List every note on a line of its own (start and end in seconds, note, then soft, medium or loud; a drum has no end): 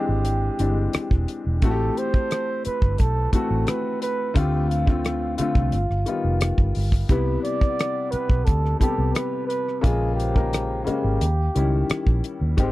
0.00 0.59 E3 medium
0.00 0.68 G#3 medium
0.00 0.59 C4 medium
0.00 0.61 D4 medium
0.00 1.26 G4 medium
0.00 1.64 G#4 medium
0.09 0.48 G#1 medium
0.25 closed hi-hat medium
0.59 0.86 G1 medium
0.59 1.25 E3 medium
0.59 1.26 C4 medium
0.59 1.26 D4 medium
0.59 0.67 G4 medium
0.59 closed hi-hat medium
0.68 1.30 G#3 medium
0.93 muted fingered electric bass stroke soft
0.93 cross-stick loud
0.93 closed hi-hat medium
1.11 1.24 E1 medium
1.11 kick medium
1.28 closed hi-hat medium
1.46 1.59 E1 medium
1.62 1.89 A1 medium
1.62 2.50 E3 medium
1.62 2.51 A3 medium
1.62 2.51 C4 medium
1.62 1.70 F#4 medium
1.62 1.99 A4 medium
1.62 kick loud
1.62 closed hi-hat medium
1.71 2.55 G4 medium
1.97 2.65 C5 loud
1.97 closed hi-hat medium
2.14 kick medium
2.31 cross-stick loud
2.31 closed hi-hat medium
2.65 3.01 B4 medium
2.65 muted fingered electric bass stroke soft
2.65 closed hi-hat medium
2.82 2.95 G1 medium
2.82 kick medium
2.98 3.26 B1 medium
2.98 3.33 A4 medium
2.98 kick medium
2.98 closed hi-hat medium
3.32 3.99 E3 medium
3.32 3.99 A3 medium
3.32 4.00 C4 medium
3.32 4.00 F#4 medium
3.32 3.69 A4 medium
3.32 kick medium
3.32 closed hi-hat medium
3.51 3.64 A1 medium
3.67 4.02 B4 medium
3.67 cross-stick medium
3.67 closed hi-hat medium
4.02 4.38 B4 loud
4.02 closed hi-hat medium
4.34 5.35 D2 medium
4.34 4.68 D3 medium
4.34 4.68 A3 medium
4.34 4.69 C4 medium
4.34 4.69 F4 medium
4.34 4.71 G4 medium
4.34 kick loud
4.34 closed hi-hat medium
4.69 5.37 F4 medium
4.69 closed hi-hat medium
4.86 5.20 D3 medium
4.86 5.20 A3 medium
4.86 5.20 C4 medium
4.86 5.21 F4 medium
4.86 kick medium
5.05 cross-stick loud
5.05 closed hi-hat medium
5.38 5.72 D3 medium
5.38 5.73 A3 medium
5.38 5.74 C4 medium
5.38 6.71 F4 medium
5.38 5.74 F4 medium
5.38 muted fingered electric bass stroke soft
5.38 closed hi-hat medium
5.55 5.69 C2 medium
5.55 kick medium
5.72 5.86 G1 medium
5.72 closed hi-hat medium
5.90 6.03 G1 medium
5.90 cross-stick soft
6.06 6.72 D#3 medium
6.06 6.73 G3 soft
6.06 6.73 B3 medium
6.06 6.74 F4 medium
6.06 closed hi-hat medium
6.24 6.51 F1 medium
6.41 cross-stick loud
6.41 closed hi-hat medium
6.58 6.71 G1 medium
6.58 kick medium
6.75 7.03 G1 medium
6.75 open hi-hat medium
6.92 kick medium
6.92 cross-stick soft
7.09 7.36 C2 medium
7.09 7.98 C3 medium
7.09 7.98 G3 medium
7.09 7.98 B3 medium
7.09 7.99 E4 medium
7.09 7.42 B4 medium
7.09 kick loud
7.09 closed hi-hat medium
7.42 8.12 D5 loud
7.42 closed hi-hat medium
7.61 kick medium
7.68 8.47 F#5 soft
7.79 cross-stick loud
7.79 closed hi-hat medium
7.91 8.67 G5 soft
8.11 8.46 B4 medium
8.11 muted fingered electric bass stroke soft
8.11 closed hi-hat medium
8.30 8.43 B1 medium
8.30 kick medium
8.45 8.74 D2 medium
8.45 8.79 A4 medium
8.45 kick medium
8.45 closed hi-hat medium
8.66 cross-stick soft
8.79 9.47 C3 medium
8.79 9.47 G3 medium
8.79 9.48 B3 medium
8.79 9.48 G4 medium
8.79 9.15 A4 medium
8.79 kick medium
8.79 closed hi-hat medium
8.98 9.11 C2 medium
9.14 9.46 B4 medium
9.14 cross-stick loud
9.14 closed hi-hat medium
9.47 9.83 B4 medium
9.47 closed hi-hat medium
9.68 cross-stick soft
9.81 10.83 A#1 medium
9.81 10.16 C#3 medium
9.81 10.16 G#3 medium
9.81 10.16 A#3 medium
9.81 10.17 F4 medium
9.81 10.14 G#4 medium
9.81 kick loud
9.81 closed hi-hat medium
10.15 10.81 G4 medium
10.15 11.01 C5 medium
10.20 closed hi-hat medium
10.34 10.68 C#3 medium
10.34 10.68 G#3 medium
10.34 10.68 A#3 medium
10.34 10.69 A#4 medium
10.34 kick medium
10.53 cross-stick loud
10.53 closed hi-hat medium
10.84 11.20 C#3 medium
10.84 11.21 G#3 medium
10.84 11.21 A#3 medium
10.84 11.21 C#4 medium
10.84 12.19 G4 medium
10.84 11.50 F5 soft
10.84 muted fingered electric bass stroke soft
10.84 closed hi-hat medium
11.04 11.17 G#1 medium
11.21 11.48 D#2 medium
11.21 closed hi-hat medium
11.55 11.82 C#2 medium
11.55 12.21 D#3 medium
11.55 12.22 G3 medium
11.55 12.22 C#4 medium
11.55 12.22 E4 medium
11.55 closed hi-hat medium
11.90 muted fingered electric bass stroke soft
11.90 cross-stick loud
11.90 closed hi-hat medium
12.07 12.20 A#1 medium
12.07 kick medium
12.24 closed hi-hat medium
12.41 12.54 D#2 medium
12.57 12.72 G#1 loud
12.57 12.72 D#3 medium
12.57 12.72 G#3 medium
12.57 12.72 C4 medium
12.57 12.72 G4 medium
12.57 12.72 C5 medium
12.57 kick loud
12.57 closed hi-hat medium